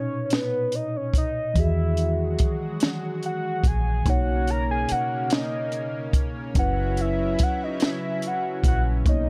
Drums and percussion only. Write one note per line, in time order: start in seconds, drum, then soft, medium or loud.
0.30 snare loud
0.30 closed hi-hat medium
0.72 closed hi-hat soft
1.14 kick medium
1.14 closed hi-hat medium
1.56 kick loud
1.56 closed hi-hat medium
1.97 closed hi-hat soft
2.39 kick medium
2.39 closed hi-hat medium
2.80 snare loud
2.80 closed hi-hat medium
3.23 closed hi-hat soft
3.64 kick medium
3.64 closed hi-hat medium
4.06 kick loud
4.06 closed hi-hat medium
4.47 closed hi-hat soft
4.89 closed hi-hat medium
5.30 snare loud
5.30 closed hi-hat medium
5.72 closed hi-hat soft
6.13 kick medium
6.13 closed hi-hat medium
6.55 kick loud
6.55 closed hi-hat medium
6.97 closed hi-hat soft
7.39 kick medium
7.39 closed hi-hat medium
7.80 snare loud
7.80 closed hi-hat medium
8.22 closed hi-hat soft
8.64 kick medium
8.64 closed hi-hat medium
9.06 kick loud
9.06 closed hi-hat medium